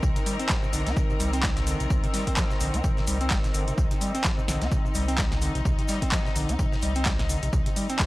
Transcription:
Already playing: D#3 C4 A#4
0.03 C2 C3, kick, tambourine, shaker
0.16 C3, closed hi-hat, shaker
0.26 G3, open hi-hat, tambourine, shaker
0.39 C4, closed hi-hat, shaker
0.49 F3, kick, snare, clap, tambourine, shaker
0.63 C3, shaker
0.73 A#1 D3, open hi-hat, tambourine, shaker
0.86 C2 C4, snare, closed hi-hat, shaker
0.96 C3, kick, tambourine, shaker
1.10 C3, shaker
1.20 C2 G3, open hi-hat, tambourine, shaker
1.33 C4, closed hi-hat, shaker
1.43 G3, kick, snare, clap, tambourine, shaker
1.57 A#2, snare, closed hi-hat, shaker
1.67 D3, open hi-hat, tambourine, shaker
1.80 A#1 C3, closed hi-hat, shaker
1.90 C2 C3, kick, tambourine, shaker
2.04 C3, closed hi-hat, shaker
2.14 G3, snare, open hi-hat, tambourine, shaker
2.27 C4, kick, closed hi-hat, shaker
2.36 F3, kick, snare, clap, tambourine, shaker
2.50 C3, snare, shaker
2.60 A#1 D3, open hi-hat, tambourine, shaker
2.74 C2 C4, closed hi-hat, shaker
2.84 C3, kick, tambourine, shaker
2.97 C3, snare, shaker
3.07 C2 G3, open hi-hat, tambourine, shaker
3.21 C4, closed hi-hat, shaker
3.30 G1 G3, kick, snare, clap, tambourine, shaker
3.44 G1 A#2, snare, closed hi-hat, shaker
3.54 G1 D3, open hi-hat, tambourine, shaker
3.68 C3, closed hi-hat, shaker
3.78 C2 C3 D#4, kick, tambourine, shaker
3.91 C3, closed hi-hat, shaker
4.01 G3, open hi-hat, tambourine, shaker
4.15 C4, closed hi-hat, shaker
4.24 F3, kick, snare, clap, tambourine, shaker
4.38 C3, shaker
4.48 A#1 D3, snare, open hi-hat, tambourine, shaker
4.61 C2 C4, snare, closed hi-hat, shaker
4.71 C3, kick, tambourine, shaker
4.85 C3, shaker
4.95 C2 G3, open hi-hat, tambourine, shaker
5.08 C4, closed hi-hat, shaker
5.18 G3, kick, snare, clap, tambourine, shaker
5.32 A#2, snare, closed hi-hat, shaker
5.42 D3, open hi-hat, tambourine, shaker
5.55 A#1 C3, closed hi-hat, shaker
5.65 C2 C3, kick, tambourine, shaker
5.78 C3, closed hi-hat, shaker
5.88 G3, snare, open hi-hat, tambourine, shaker
6.02 C4, kick, closed hi-hat, shaker
6.12 F3, kick, snare, clap, tambourine, shaker
6.25 C3, snare, shaker
6.36 A#1 D3, open hi-hat, tambourine, shaker
6.49 C2 C4, closed hi-hat, shaker
6.59 C3, kick, tambourine, shaker
6.72 C3, snare, shaker
6.82 C2 G3, open hi-hat, tambourine, shaker
6.95 C4, closed hi-hat, shaker
7.05 G3, kick, snare, clap, tambourine, shaker
7.19 A#2, snare, closed hi-hat, shaker
7.29 D3, open hi-hat, tambourine, shaker
7.43 A#1 C3, closed hi-hat, shaker
7.53 C2 C3, kick, tambourine, shaker
7.66 C3, closed hi-hat, shaker
7.76 G3, open hi-hat, tambourine, shaker
7.89 C4, closed hi-hat, shaker
7.99 F3, kick, snare, clap, tambourine, shaker

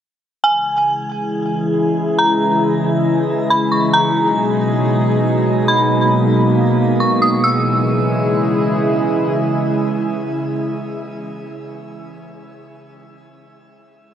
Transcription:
0.43 C#3 E3 G#3 E4 G#4 G#5
2.19 A#5
3.50 B5
3.72 C#6
3.93 B2 F#3 D#4 G#4 A#5
5.68 A#3 B5
7.00 C#6
7.22 D#6
7.44 C#3 E3 G#3 E4 G#4 E6

